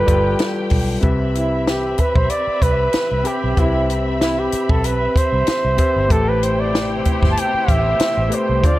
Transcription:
0.00 0.06 G3 medium
0.00 0.07 F4 medium
0.00 1.01 G4 medium
0.00 0.08 A4 medium
0.00 0.09 B4 medium
0.00 0.73 B4 loud
0.00 1.01 G5 medium
0.06 0.34 G1 medium
0.06 0.79 G3 medium
0.06 0.80 F4 medium
0.06 0.80 A4 medium
0.06 0.81 B4 medium
0.06 kick medium
0.06 closed hi-hat medium
0.39 snare loud
0.39 closed hi-hat medium
0.70 0.97 B1 medium
0.70 kick medium
0.70 open hi-hat medium
1.01 1.95 C2 medium
1.01 1.98 C4 medium
1.01 6.06 C4 medium
1.01 1.98 G4 medium
1.01 1.99 B4 medium
1.01 6.06 E5 medium
1.01 1.99 E5 medium
1.01 6.06 B5 medium
1.01 kick medium
1.01 closed hi-hat medium
1.35 1.70 E4 medium
1.35 closed hi-hat medium
1.67 2.01 G4 medium
1.67 snare loud
1.67 closed hi-hat medium
1.98 2.17 B4 medium
1.98 muted fingered electric bass stroke soft
1.98 kick medium
1.98 closed hi-hat medium
2.16 2.27 B1 medium
2.16 2.32 C5 medium
2.16 kick loud
2.30 2.64 D5 loud
2.30 closed hi-hat medium
2.47 muted fingered electric bass stroke soft
2.62 2.87 C2 medium
2.62 3.28 B4 medium
2.62 kick medium
2.62 closed hi-hat medium
2.93 muted fingered electric bass stroke soft
2.93 snare loud
2.93 closed hi-hat medium
3.12 3.23 C2 medium
3.24 3.49 C4 medium
3.24 3.49 G4 medium
3.24 3.61 G4 medium
3.24 3.50 B4 medium
3.24 3.51 G5 medium
3.24 closed hi-hat medium
3.44 3.55 B1 medium
3.55 4.49 C2 medium
3.55 4.51 C4 medium
3.55 4.52 G4 medium
3.55 4.52 B4 medium
3.55 4.53 E5 medium
3.55 kick medium
3.55 closed hi-hat medium
3.60 3.90 E4 medium
3.90 closed hi-hat medium
4.20 4.40 E4 medium
4.20 snare medium
4.20 closed hi-hat medium
4.39 4.71 G4 medium
4.52 muted fingered electric bass stroke soft
4.52 closed hi-hat medium
4.69 5.07 B1 medium
4.69 4.87 A4 medium
4.69 kick medium
4.84 5.19 B4 medium
4.84 closed hi-hat medium
5.16 6.13 C5 loud
5.16 muted fingered electric bass stroke soft
5.16 kick medium
5.16 closed hi-hat medium
5.33 5.44 C2 medium
5.47 snare loud
5.47 closed hi-hat medium
5.65 5.76 C2 medium
5.77 6.02 C4 medium
5.77 6.03 G4 medium
5.77 6.03 B4 medium
5.77 6.04 E5 medium
5.77 kick medium
5.77 closed hi-hat medium
5.96 6.08 G1 medium
6.08 7.02 A1 medium
6.08 8.61 B2 medium
6.08 8.61 C3 medium
6.08 7.04 A3 medium
6.08 8.61 A3 medium
6.08 8.60 E4 medium
6.08 7.05 G4 medium
6.08 8.61 G4 medium
6.08 6.30 A4 loud
6.08 7.06 B4 medium
6.08 8.60 C5 medium
6.08 7.06 C5 medium
6.08 8.60 G5 medium
6.08 kick loud
6.08 closed hi-hat medium
6.29 6.45 B4 medium
6.43 6.62 C5 medium
6.43 closed hi-hat medium
6.60 6.91 D5 medium
6.75 snare loud
6.75 closed hi-hat medium
7.05 muted fingered electric bass stroke soft
7.05 kick medium
7.05 closed hi-hat medium
7.23 7.35 G1 medium
7.23 kick medium
7.23 snare soft
7.32 7.41 A5 medium
7.37 7.72 G5 loud
7.37 closed hi-hat medium
7.54 muted fingered electric bass stroke soft
7.68 7.94 A1 medium
7.68 8.36 E5 medium
7.68 kick medium
7.68 closed hi-hat medium
8.00 muted fingered electric bass stroke medium
8.00 snare loud
8.00 closed hi-hat medium
8.17 8.29 A1 medium
8.29 8.55 A3 medium
8.29 8.55 G4 medium
8.29 8.56 B4 medium
8.29 8.56 C5 medium
8.29 closed hi-hat medium
8.35 8.68 C5 medium
8.49 8.64 C2 medium
8.62 8.79 D2 medium
8.62 8.79 D3 medium
8.62 8.79 A3 medium
8.62 8.79 C4 medium
8.62 8.79 D4 medium
8.62 8.79 F4 medium
8.62 8.79 C5 medium
8.62 8.79 F5 medium
8.62 kick loud
8.62 closed hi-hat medium
8.67 8.79 D5 loud

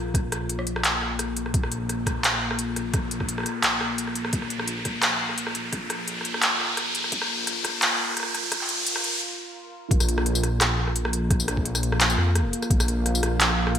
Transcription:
0.00 0.66 A#1 loud
0.00 9.90 A#3 medium
0.00 9.91 F4 medium
0.00 9.91 A#4 medium
0.00 9.91 F5 medium
0.00 riser medium
0.14 kick loud
0.14 cross-stick medium
0.14 closed hi-hat medium
0.32 cross-stick medium
0.32 closed hi-hat medium
0.49 closed hi-hat medium
0.59 cross-stick medium
0.67 1.53 A#1 medium
0.67 closed hi-hat medium
0.76 cross-stick medium
0.84 clap loud
0.84 closed hi-hat medium
1.02 cross-stick medium
1.19 cross-stick medium
1.19 closed hi-hat medium
1.37 closed hi-hat medium
1.46 cross-stick medium
1.54 2.22 A#1 medium
1.54 kick loud
1.54 closed hi-hat medium
1.63 cross-stick medium
1.72 closed hi-hat medium
1.89 cross-stick medium
1.89 closed hi-hat medium
2.06 kick medium
2.06 cross-stick medium
2.06 closed hi-hat medium
2.24 2.75 A#1 loud
2.24 clap loud
2.24 closed hi-hat medium
2.33 cross-stick medium
2.51 cross-stick medium
2.59 closed hi-hat medium
2.76 3.45 A#1 loud
2.76 cross-stick medium
2.76 closed hi-hat medium
2.94 kick loud
2.94 cross-stick medium
2.94 closed hi-hat medium
3.11 closed hi-hat medium
3.20 kick medium
3.20 cross-stick medium
3.29 closed hi-hat medium
3.38 cross-stick medium
3.40 cross-stick medium
3.43 cross-stick soft
3.46 cross-stick soft
3.46 closed hi-hat medium
3.49 cross-stick soft
3.52 cross-stick soft
3.63 4.32 A#1 medium
3.63 cross-stick soft
3.63 clap loud
3.63 closed hi-hat medium
3.81 cross-stick medium
3.98 closed hi-hat medium
4.07 cross-stick soft
4.15 closed hi-hat medium
4.25 cross-stick medium
4.33 5.02 A#1 loud
4.33 kick loud
4.33 closed hi-hat medium
4.42 cross-stick soft
4.50 closed hi-hat medium
4.59 cross-stick medium
4.68 closed hi-hat medium
4.85 kick medium
4.85 cross-stick medium
4.85 closed hi-hat medium
5.02 5.54 A#1 loud
5.02 cross-stick medium
5.02 clap loud
5.02 closed hi-hat medium
5.29 cross-stick soft
5.38 closed hi-hat medium
5.47 cross-stick medium
5.55 6.24 A#1 loud
5.55 closed hi-hat medium
5.73 kick loud
5.73 cross-stick medium
5.73 closed hi-hat medium
5.90 cross-stick medium
5.90 closed hi-hat medium
6.08 closed hi-hat medium
6.21 7.11 A#1 loud
6.21 cross-stick medium
6.25 closed hi-hat medium
6.34 cross-stick medium
6.42 clap loud
6.42 closed hi-hat medium
6.60 cross-stick medium
6.77 cross-stick medium
6.77 closed hi-hat medium
6.95 closed hi-hat medium
7.04 cross-stick soft
7.12 7.81 A#1 loud
7.12 kick loud
7.12 closed hi-hat medium
7.22 cross-stick medium
7.47 cross-stick medium
7.47 closed hi-hat medium
7.64 kick medium
7.64 cross-stick medium
7.64 closed hi-hat medium
7.82 8.33 A#1 loud
7.82 clap loud
7.82 closed hi-hat medium
7.91 cross-stick medium
8.09 cross-stick soft
8.11 cross-stick soft
8.14 cross-stick medium
8.17 cross-stick medium
8.17 closed hi-hat medium
8.20 cross-stick medium
8.23 cross-stick medium
8.34 9.03 A#1 loud
8.34 cross-stick medium
8.34 closed hi-hat medium
8.52 kick loud
8.52 cross-stick medium
8.52 closed hi-hat medium
8.61 clap soft
8.69 closed hi-hat medium
8.87 closed hi-hat medium
8.96 cross-stick medium
9.04 closed hi-hat medium
9.91 10.42 A#1 medium
9.91 13.79 A#3 medium
9.91 kick loud
9.91 closed hi-hat medium
10.00 cross-stick medium
10.00 tambourine medium
10.09 closed hi-hat medium
10.18 cross-stick medium
10.26 closed hi-hat medium
10.31 13.79 F4 loud
10.31 tambourine medium
10.43 11.47 A#1 medium
10.43 cross-stick medium
10.43 closed hi-hat medium
10.61 cross-stick medium
10.61 clap loud
10.61 closed hi-hat medium
10.74 13.79 F5 medium
10.87 13.79 A#4 medium
10.87 cross-stick medium
10.96 closed hi-hat medium
11.05 cross-stick medium
11.13 closed hi-hat medium
11.30 kick loud
11.30 cross-stick medium
11.30 closed hi-hat medium
11.40 tambourine medium
11.48 12.17 A#1 medium
11.48 cross-stick medium
11.48 closed hi-hat medium
11.57 kick medium
11.65 closed hi-hat medium
11.75 cross-stick medium
11.75 tambourine medium
11.83 closed hi-hat medium
11.92 cross-stick medium
12.01 clap loud
12.01 closed hi-hat medium
12.10 tambourine medium
12.18 12.51 F2 medium
12.18 cross-stick medium
12.35 cross-stick medium
12.35 closed hi-hat medium
12.53 closed hi-hat medium
12.62 cross-stick medium
12.62 tambourine soft
12.70 13.21 A#1 loud
12.70 kick loud
12.70 closed hi-hat medium
12.80 cross-stick medium
12.80 tambourine medium
12.88 closed hi-hat medium
13.06 cross-stick medium
13.06 closed hi-hat medium
13.15 tambourine medium
13.23 13.79 A#1 medium
13.23 cross-stick medium
13.23 closed hi-hat medium
13.41 clap loud
13.41 closed hi-hat medium
13.50 cross-stick medium
13.67 cross-stick medium
13.75 closed hi-hat medium

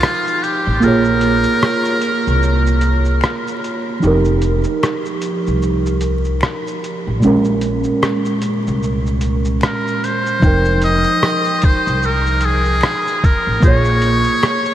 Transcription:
0.00 0.77 F3 medium
0.00 0.78 D#4 medium
0.00 0.45 F4 loud
0.00 0.80 A#4 medium
0.00 0.79 G5 medium
0.00 finger snap medium
0.00 cross-stick medium
0.00 shaker soft
0.27 shaker medium
0.43 0.85 G4 medium
0.43 closed hi-hat medium
0.43 shaker soft
0.67 0.82 A1 medium
0.80 1.43 A#1 medium
0.80 3.97 A#3 medium
0.80 3.98 F4 medium
0.80 3.63 A#4 loud
0.80 shaker medium
0.85 4.00 G#4 medium
0.85 4.01 C#5 medium
1.04 shaker soft
1.21 closed hi-hat medium
1.21 shaker soft
1.43 shaker medium
1.63 finger snap medium
1.63 cross-stick loud
1.63 shaker soft
1.85 shaker medium
2.02 closed hi-hat medium
2.02 shaker soft
2.27 3.19 C2 medium
2.27 shaker soft
2.43 shaker medium
2.66 shaker medium
2.81 closed hi-hat medium
2.81 shaker medium
3.05 shaker soft
3.21 finger snap medium
3.21 cross-stick loud
3.21 shaker medium
3.47 shaker medium
3.64 closed hi-hat medium
3.64 shaker soft
4.00 4.63 F1 loud
4.00 7.17 F3 medium
4.00 7.18 D#4 medium
4.00 shaker medium
4.05 7.20 G4 medium
4.05 7.21 A#4 medium
4.25 shaker soft
4.42 closed hi-hat medium
4.42 shaker soft
4.64 shaker soft
4.83 finger snap medium
4.83 cross-stick loud
4.83 shaker medium
5.05 shaker medium
5.22 closed hi-hat medium
5.22 shaker medium
5.47 6.39 C2 medium
5.47 shaker soft
5.62 shaker medium
5.86 shaker soft
6.01 closed hi-hat medium
6.01 shaker medium
6.25 shaker soft
6.41 finger snap medium
6.41 cross-stick medium
6.41 shaker soft
6.67 shaker soft
6.84 closed hi-hat medium
6.84 shaker soft
7.07 7.22 A1 medium
7.20 7.83 A#1 medium
7.20 10.37 A#2 medium
7.20 10.38 G#3 medium
7.20 shaker medium
7.25 10.39 C#4 medium
7.25 10.41 A#4 medium
7.44 shaker soft
7.61 closed hi-hat medium
7.61 shaker soft
7.84 shaker medium
8.03 finger snap medium
8.03 cross-stick loud
8.03 shaker soft
8.25 shaker medium
8.42 closed hi-hat medium
8.42 shaker medium
8.67 9.59 C2 medium
8.67 shaker soft
8.83 shaker medium
9.06 shaker soft
9.21 closed hi-hat medium
9.21 shaker soft
9.45 shaker soft
9.61 10.06 A#4 medium
9.61 finger snap medium
9.61 cross-stick loud
9.61 shaker medium
9.87 shaker soft
10.04 10.84 C5 loud
10.04 closed hi-hat medium
10.04 shaker soft
10.26 shaker soft
10.40 11.03 F1 loud
10.40 13.57 F3 medium
10.40 13.58 D#4 medium
10.40 kick loud
10.40 shaker medium
10.44 13.61 A#4 medium
10.44 13.59 G5 medium
10.65 shaker soft
10.82 11.67 D#5 loud
10.82 closed hi-hat medium
10.82 shaker soft
11.03 shaker soft
11.23 finger snap medium
11.23 cross-stick loud
11.23 shaker medium
11.45 shaker medium
11.62 12.07 C5 loud
11.62 kick medium
11.62 closed hi-hat medium
11.62 shaker medium
11.87 12.79 C2 medium
11.87 shaker medium
12.02 12.47 A#4 loud
12.02 shaker medium
12.26 shaker soft
12.41 closed hi-hat medium
12.41 shaker soft
12.45 13.27 G#4 loud
12.65 shaker soft
12.81 finger snap medium
12.81 cross-stick loud
12.81 shaker soft
13.07 shaker soft
13.24 13.64 A#4 medium
13.24 kick medium
13.24 closed hi-hat medium
13.24 shaker soft
13.47 13.62 A1 medium
13.60 14.23 A#1 medium
13.60 14.74 A#3 medium
13.60 14.74 F4 medium
13.60 kick loud
13.60 shaker medium
13.65 14.74 G#4 medium
13.65 14.74 C#5 loud
13.65 14.74 C#5 medium
13.85 shaker medium
14.02 closed hi-hat medium
14.02 shaker soft
14.24 shaker soft
14.43 finger snap medium
14.43 cross-stick loud
14.43 shaker medium
14.65 shaker medium

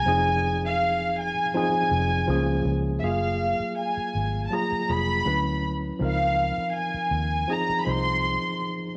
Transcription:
0.00 0.59 G#5 loud
0.06 1.33 F1 loud
0.06 1.31 F3 medium
0.06 1.31 C4 medium
0.06 1.32 D#4 medium
0.06 1.32 G#4 medium
0.65 1.15 F5 medium
1.21 1.56 G#5 medium
1.54 2.26 F3 medium
1.54 2.29 C4 medium
1.54 2.29 D#4 medium
1.54 2.29 G#4 medium
1.54 2.63 G#5 medium
1.91 2.24 F1 medium
2.27 2.61 C#2 loud
2.27 2.91 F3 medium
2.27 2.92 A#3 medium
2.27 2.92 C#4 medium
2.27 2.92 G#4 medium
2.65 2.98 C#2 loud
2.99 3.53 F#1 medium
2.99 4.27 F#3 medium
2.99 4.28 A#3 medium
2.99 3.04 E5 medium
3.04 4.28 F4 medium
3.04 4.28 G#4 medium
3.04 3.78 F5 medium
3.60 muted fingered electric bass stroke soft
3.77 4.41 G#5 medium
3.97 muted fingered electric bass stroke soft
4.15 4.47 G#1 medium
4.46 4.52 A5 medium
4.50 4.82 F#3 medium
4.50 4.83 A#3 medium
4.50 4.84 F4 medium
4.50 4.84 G#4 medium
4.50 4.89 A#5 medium
4.72 muted fingered electric bass stroke soft
4.88 5.22 F1 medium
4.88 5.24 F#3 medium
4.88 5.26 A#3 medium
4.88 5.26 F4 medium
4.88 5.27 G#4 medium
4.88 5.64 B5 loud
5.25 5.91 D2 medium
5.25 5.88 F#3 medium
5.25 5.89 C#4 medium
5.25 5.89 E4 medium
5.25 5.90 B4 medium
5.99 6.50 C#2 medium
5.99 7.25 F3 medium
5.99 7.25 C4 medium
5.99 7.25 D#4 medium
5.99 7.26 A#4 medium
6.05 6.73 F5 medium
6.58 muted fingered electric bass stroke soft
6.78 7.51 G#5 medium
6.94 muted fingered electric bass stroke soft
7.11 7.44 D#2 medium
7.47 7.80 F3 medium
7.47 7.80 C4 medium
7.47 7.81 D#4 medium
7.47 7.81 G#4 medium
7.51 7.81 A#5 medium
7.69 muted fingered electric bass stroke soft
7.82 8.80 F3 medium
7.82 8.80 C4 medium
7.82 7.87 B5 medium
7.86 8.36 C2 medium
7.86 8.81 D#4 medium
7.86 8.81 C5 medium
7.86 8.62 C6 medium

